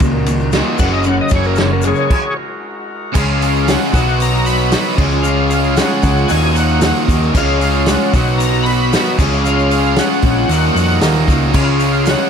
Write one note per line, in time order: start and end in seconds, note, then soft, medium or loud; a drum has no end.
0.00 0.61 C#2 medium
0.00 0.24 D#2 medium
0.00 0.51 D#2 medium
0.00 0.24 D#2 medium
0.00 0.24 A#2 medium
0.00 0.52 A#2 medium
0.00 0.24 A#2 medium
0.00 0.51 D#3 medium
0.00 0.78 F#3 medium
0.00 0.12 A#3 medium
0.00 1.94 A#3 medium
0.00 0.11 D#4 medium
0.00 0.78 D#4 medium
0.00 0.11 F#4 medium
0.00 0.78 A#4 medium
0.00 kick loud
0.00 ride loud
0.00 shaker medium
0.12 0.25 A#3 soft
0.12 0.26 D#4 medium
0.12 0.26 F#4 medium
0.25 0.50 D#2 medium
0.25 0.51 D#2 medium
0.25 0.51 A#2 medium
0.25 0.39 D#3 medium
0.25 0.40 A#3 medium
0.25 0.40 D#4 medium
0.25 0.38 F#4 medium
0.25 ride medium
0.25 shaker medium
0.39 0.51 A#3 soft
0.39 0.52 D#4 medium
0.39 0.53 F#4 medium
0.39 shaker soft
0.52 0.78 D#2 medium
0.52 0.78 A#2 loud
0.52 0.77 D#3 medium
0.52 0.78 D#3 medium
0.52 0.77 A#3 loud
0.52 0.78 D#4 loud
0.52 0.80 F#4 medium
0.52 snare loud
0.52 ride loud
0.52 shaker medium
0.78 1.19 F#1 loud
0.78 1.04 F#2 medium
0.78 1.04 C#3 medium
0.78 1.05 C#3 medium
0.78 1.03 F#3 medium
0.78 1.04 F#3 loud
0.78 3.14 G#3 medium
0.78 1.04 A#3 medium
0.78 1.04 C#4 medium
0.78 1.04 G#4 medium
0.78 3.14 A#4 medium
0.78 0.92 F#5 loud
0.78 kick loud
0.78 crash medium
0.78 shaker loud
0.82 3.15 F#4 medium
0.93 1.05 D#5 loud
1.03 1.30 F#2 medium
1.03 1.30 C#3 medium
1.03 1.29 F#3 medium
1.03 1.30 A#3 medium
1.03 1.31 C#4 medium
1.03 1.32 G#4 medium
1.03 1.18 F#5 medium
1.03 shaker medium
1.21 1.32 D#5 medium
1.29 1.92 F#1 loud
1.29 1.56 F#2 loud
1.29 1.56 F#2 medium
1.29 1.54 F#3 medium
1.29 1.55 A#3 medium
1.29 1.55 C#4 medium
1.29 kick loud
1.29 ride medium
1.29 shaker medium
1.33 1.57 C#3 medium
1.33 1.57 C#3 loud
1.33 1.57 F#3 loud
1.33 1.56 G#4 medium
1.33 1.46 C#5 medium
1.43 1.58 A#4 loud
1.43 shaker soft
1.55 1.82 F#2 medium
1.55 1.82 C#3 loud
1.55 1.82 F#3 medium
1.55 1.83 A#3 medium
1.55 1.83 C#4 loud
1.55 1.84 G#4 loud
1.55 snare loud
1.55 ride medium
1.55 shaker medium
1.59 1.82 F#2 medium
1.59 1.82 C#3 medium
1.59 2.10 F#3 medium
1.59 1.71 C#5 loud
1.73 1.84 A#4 medium
1.82 2.08 F#2 medium
1.82 2.08 C#3 medium
1.82 1.97 F#3 medium
1.82 1.97 A#3 medium
1.82 1.96 C#4 medium
1.82 ride medium
1.82 shaker loud
1.86 1.94 G#4 medium
1.86 2.35 G#4 loud
1.86 2.37 C#5 loud
1.95 2.11 A#3 soft
1.95 2.10 C#4 medium
1.95 2.10 G#4 medium
1.95 shaker soft
2.10 kick loud
2.10 crash loud
3.14 3.76 C#2 loud
3.14 3.41 C#3 medium
3.14 3.92 C#3 medium
3.14 3.39 F3 medium
3.14 3.93 G#3 medium
3.14 3.41 G#3 medium
3.14 3.93 G#3 medium
3.14 3.42 C#4 loud
3.14 3.94 C#4 loud
3.14 3.93 F4 medium
3.14 3.40 F4 loud
3.14 3.42 G#4 loud
3.14 3.93 C#5 medium
3.14 3.70 F5 medium
3.14 kick loud
3.14 crash loud
3.14 shaker loud
3.41 3.66 F3 medium
3.41 3.66 G#3 medium
3.41 3.67 C#4 medium
3.41 3.66 F4 medium
3.41 3.66 G#4 medium
3.41 open hi-hat medium
3.41 shaker medium
3.55 shaker soft
3.66 3.93 C#3 medium
3.66 3.94 F3 medium
3.66 3.94 G#3 medium
3.66 3.94 C#4 loud
3.66 3.92 F4 loud
3.66 3.94 G#4 loud
3.66 snare loud
3.66 open hi-hat medium
3.66 shaker loud
3.71 4.18 F#5 loud
3.93 4.74 B1 loud
3.93 4.70 B2 loud
3.93 4.69 B2 medium
3.93 4.34 D#3 medium
3.93 4.71 F#3 loud
3.93 4.70 F#3 medium
3.93 4.98 B3 medium
3.93 4.34 B3 medium
3.93 4.72 B3 loud
3.93 4.33 D#4 medium
3.93 4.98 F#4 medium
3.93 4.32 F#4 medium
3.93 4.97 D#5 medium
3.93 kick loud
3.93 open hi-hat medium
3.93 shaker medium
4.08 shaker soft
4.20 4.46 A#5 loud
4.20 open hi-hat medium
4.20 shaker loud
4.33 4.45 B3 soft
4.33 4.46 D#4 medium
4.33 4.46 F#4 medium
4.33 shaker soft
4.45 4.70 D#3 medium
4.45 4.70 B3 medium
4.45 4.70 D#4 medium
4.45 4.71 F#4 medium
4.45 4.95 B5 loud
4.45 open hi-hat medium
4.45 shaker medium
4.58 shaker soft
4.70 4.98 B2 medium
4.70 4.97 B2 medium
4.70 4.96 D#3 medium
4.70 4.96 F#3 medium
4.70 4.97 F#3 medium
4.70 4.97 B3 medium
4.70 4.98 D#4 medium
4.70 4.99 F#4 loud
4.70 snare loud
4.70 open hi-hat medium
4.70 shaker loud
4.75 4.98 B3 medium
4.85 shaker soft
4.96 5.79 C#2 medium
4.96 5.75 C#3 medium
4.96 5.22 C#3 medium
4.96 5.11 F3 medium
4.96 5.12 G#3 medium
4.96 6.28 C#4 medium
4.96 5.11 C#4 medium
4.96 5.11 F4 medium
4.96 5.25 G#4 medium
4.96 6.28 G#4 medium
4.96 6.28 G#5 medium
4.96 kick loud
4.96 snare soft
4.96 crash loud
5.00 5.76 G#3 loud
5.00 5.78 C#4 medium
5.11 5.23 G#3 soft
5.11 5.23 C#4 medium
5.11 5.24 F4 medium
5.11 shaker soft
5.23 5.50 C#3 medium
5.23 5.48 F3 medium
5.23 5.49 G#3 medium
5.23 5.50 C#4 loud
5.23 5.49 F4 loud
5.23 5.47 G#4 loud
5.23 5.78 F5 medium
5.23 shaker loud
5.49 5.74 F3 medium
5.49 5.74 G#3 medium
5.49 5.75 C#4 medium
5.49 5.75 F4 medium
5.49 5.77 G#4 medium
5.49 open hi-hat medium
5.49 shaker medium
5.63 shaker soft
5.75 6.03 C#3 medium
5.75 6.28 C#3 medium
5.75 5.99 F3 medium
5.75 6.00 G#3 medium
5.75 6.29 G#3 medium
5.75 6.02 C#4 medium
5.75 6.02 F4 medium
5.75 6.29 G#4 medium
5.75 6.32 F#5 loud
5.75 snare loud
5.75 open hi-hat medium
5.75 shaker loud
5.80 6.30 C#4 medium
6.01 6.24 C#2 loud
6.01 6.29 G#3 medium
6.01 6.29 C#4 medium
6.01 6.29 F4 medium
6.01 kick medium
6.01 open hi-hat medium
6.01 shaker medium
6.17 shaker soft
6.27 6.79 D#2 medium
6.27 7.07 D#2 loud
6.27 6.91 D#2 loud
6.27 6.81 A#2 loud
6.27 7.07 A#2 loud
6.27 6.43 D#3 medium
6.27 6.55 F#3 loud
6.27 6.43 A#3 medium
6.27 7.33 D#4 medium
6.27 6.42 D#4 medium
6.27 6.40 F#4 medium
6.27 7.34 A#4 medium
6.27 7.33 F#5 medium
6.27 6.56 G#5 loud
6.27 open hi-hat medium
6.27 shaker loud
6.33 7.07 D#3 loud
6.42 6.56 A#3 soft
6.42 6.56 D#4 medium
6.42 6.56 F#4 medium
6.42 shaker soft
6.54 6.69 D#3 medium
6.54 6.81 F#3 medium
6.54 6.69 A#3 medium
6.54 6.68 D#4 medium
6.54 6.66 F#4 medium
6.54 7.04 F#5 loud
6.54 open hi-hat medium
6.54 shaker medium
6.67 6.78 A#3 soft
6.67 6.79 D#4 soft
6.67 6.79 F#4 medium
6.67 shaker soft
6.80 7.33 D#2 loud
6.80 7.33 A#2 loud
6.80 7.04 D#3 medium
6.80 7.08 F#3 loud
6.80 7.06 A#3 medium
6.80 7.06 D#4 medium
6.80 7.06 F#4 loud
6.80 snare loud
6.80 open hi-hat medium
6.80 shaker loud
6.84 7.05 D#4 loud
6.95 shaker soft
7.06 7.29 D#2 loud
7.06 7.20 D#3 medium
7.06 7.33 D#3 loud
7.06 7.34 F#3 medium
7.06 7.21 A#3 medium
7.06 7.21 D#4 medium
7.06 7.19 F#4 medium
7.06 kick medium
7.06 open hi-hat medium
7.10 7.35 D#2 medium
7.10 7.34 A#2 medium
7.10 7.34 D#3 medium
7.10 shaker medium
7.20 7.34 A#3 soft
7.20 7.35 D#4 medium
7.20 7.34 F#4 medium
7.20 shaker soft
7.34 7.95 C#2 loud
7.34 7.61 C#3 medium
7.34 8.12 C#3 loud
7.34 7.58 F3 loud
7.34 7.58 G#3 medium
7.34 8.13 G#3 loud
7.34 8.13 C#4 medium
7.34 7.58 C#4 loud
7.34 7.60 F4 loud
7.34 8.13 G#4 medium
7.34 7.60 G#4 loud
7.34 8.12 F5 medium
7.34 7.90 F5 medium
7.34 kick loud
7.34 crash loud
7.34 shaker loud
7.38 8.14 C#4 loud
7.59 7.86 F3 medium
7.59 7.86 G#3 medium
7.59 7.86 C#4 medium
7.59 7.87 F4 medium
7.59 7.89 G#4 medium
7.59 open hi-hat medium
7.59 shaker medium
7.64 7.87 C#4 medium
7.75 shaker soft
7.86 8.13 C#3 medium
7.86 8.12 F3 medium
7.86 8.13 G#3 loud
7.86 8.14 C#4 loud
7.86 8.14 F4 medium
7.86 8.36 F#5 medium
7.86 snare loud
7.86 open hi-hat medium
7.86 shaker loud
7.90 8.13 G#4 loud
8.12 8.94 B1 loud
8.12 8.91 B2 medium
8.12 8.53 D#3 medium
8.12 8.92 F#3 loud
8.12 8.93 F#3 medium
8.12 8.53 B3 medium
8.12 9.17 D#4 medium
8.12 8.53 D#4 medium
8.12 8.52 F#4 medium
8.12 9.17 B4 medium
8.12 9.17 F#5 medium
8.12 kick loud
8.12 open hi-hat medium
8.12 shaker medium
8.17 8.92 B2 medium
8.17 8.92 B3 loud
8.27 shaker soft
8.38 8.66 A#5 loud
8.38 open hi-hat medium
8.38 shaker loud
8.53 8.66 B3 soft
8.53 8.67 D#4 soft
8.53 8.66 F#4 medium
8.53 shaker soft
8.63 8.91 D#3 medium
8.63 9.13 B5 loud
8.63 open hi-hat medium
8.67 8.91 B3 medium
8.67 8.92 D#4 medium
8.67 8.92 F#4 medium
8.91 9.18 B2 medium
8.91 9.17 B2 medium
8.91 9.17 D#3 medium
8.91 9.18 F#3 medium
8.91 9.18 F#3 loud
8.91 9.19 B3 medium
8.91 9.19 D#4 medium
8.91 9.19 F#4 medium
8.91 snare loud
8.91 open hi-hat medium
8.91 shaker loud
8.96 9.19 B3 medium
9.05 shaker soft
9.18 9.99 C#2 medium
9.18 9.95 C#3 loud
9.18 9.42 C#3 medium
9.18 9.31 F3 medium
9.18 9.32 G#3 medium
9.18 9.96 G#3 loud
9.18 9.44 C#4 medium
9.18 9.97 C#4 medium
9.18 10.50 C#4 medium
9.18 9.30 F4 medium
9.18 9.45 G#4 medium
9.18 10.49 G#4 medium
9.18 10.49 F5 medium
9.18 kick loud
9.18 snare soft
9.18 crash loud
9.18 shaker medium
9.32 9.46 G#3 medium
9.32 9.45 C#4 medium
9.32 9.45 F4 medium
9.32 shaker soft
9.45 9.71 C#3 medium
9.45 9.71 F3 medium
9.45 9.72 G#3 medium
9.45 9.72 C#4 loud
9.45 9.72 F4 loud
9.45 9.68 G#4 loud
9.45 9.99 F5 loud
9.45 shaker loud
9.59 shaker soft
9.69 9.97 F3 medium
9.69 9.97 G#3 medium
9.69 9.97 C#4 medium
9.69 9.97 G#4 medium
9.69 open hi-hat medium
9.69 shaker medium
9.74 9.98 F4 medium
9.85 shaker soft
9.96 10.48 C#3 medium
9.96 10.24 C#3 medium
9.96 10.22 F3 medium
9.96 10.22 G#3 medium
9.96 10.49 G#3 medium
9.96 10.23 C#4 loud
9.96 10.24 F4 medium
9.96 10.49 G#4 medium
9.96 10.25 F#5 loud
9.96 snare loud
9.96 open hi-hat medium
9.96 shaker loud
10.00 10.50 C#4 medium
10.12 shaker soft
10.22 10.43 A#1 loud
10.22 10.49 F3 medium
10.22 10.50 G#3 medium
10.22 10.50 C#4 medium
10.22 10.51 F4 medium
10.22 10.99 F#5 loud
10.22 kick medium
10.22 open hi-hat medium
10.48 10.98 D#2 medium
10.48 10.69 D#2 loud
10.48 11.26 D#2 loud
10.48 10.99 A#2 loud
10.48 11.27 A#2 loud
10.48 10.63 D#3 medium
10.48 11.27 D#3 loud
10.48 10.75 F#3 loud
10.48 10.63 A#3 medium
10.48 11.53 D#4 medium
10.48 10.64 D#4 medium
10.48 10.62 F#4 medium
10.48 11.53 A#4 medium
10.48 11.53 F#5 medium
10.48 open hi-hat medium
10.48 shaker loud
10.63 10.74 A#3 soft
10.63 10.75 D#4 medium
10.63 10.75 F#4 medium
10.63 shaker soft
10.75 10.99 F2 medium
10.75 10.99 D#3 medium
10.75 11.00 F#3 medium
10.75 11.01 A#3 medium
10.75 11.01 D#4 medium
10.75 11.01 F#4 medium
10.75 open hi-hat medium
10.75 shaker medium
10.90 shaker soft
11.00 11.52 D#2 loud
11.00 11.25 D#2 medium
11.00 11.52 A#2 loud
11.00 11.24 D#3 loud
11.00 11.27 F#3 loud
11.00 11.26 A#3 loud
11.00 11.26 D#4 medium
11.00 11.27 F#4 loud
11.00 snare loud
11.00 open hi-hat medium
11.00 shaker loud
11.15 shaker soft
11.26 11.52 C#2 medium
11.26 11.53 A#2 medium
11.26 11.40 D#3 medium
11.26 11.53 D#3 medium
11.26 11.53 F#3 medium
11.26 11.41 A#3 medium
11.26 11.40 D#4 medium
11.26 11.39 F#4 medium
11.26 kick medium
11.26 snare soft
11.26 open hi-hat medium
11.26 shaker medium
11.30 11.54 D#2 medium
11.30 11.53 D#3 medium
11.40 11.55 A#3 soft
11.40 11.54 D#4 soft
11.40 11.54 F#4 medium
11.40 shaker soft
11.53 12.14 C#2 loud
11.53 12.30 C#3 loud
11.53 11.81 C#3 medium
11.53 11.79 F3 medium
11.53 12.30 G#3 medium
11.53 11.79 G#3 medium
11.53 12.30 C#4 medium
11.53 11.81 C#4 medium
11.53 12.30 C#4 loud
11.53 11.82 F4 loud
11.53 12.30 G#4 medium
11.53 11.77 G#4 loud
11.53 12.30 F5 medium
11.53 12.09 F5 medium
11.53 kick loud
11.53 crash loud
11.53 shaker medium
11.78 12.05 F3 medium
11.78 12.05 G#3 medium
11.78 12.06 G#4 medium
11.78 open hi-hat medium
11.78 shaker medium
11.82 12.05 C#4 medium
11.82 12.05 F4 medium
11.93 shaker soft
12.05 12.30 C#3 medium
12.05 12.30 F3 medium
12.05 12.30 G#3 medium
12.05 12.30 C#4 loud
12.05 12.30 F4 loud
12.05 12.30 G#4 loud
12.05 snare loud
12.05 open hi-hat medium
12.05 shaker loud
12.10 12.30 F#5 loud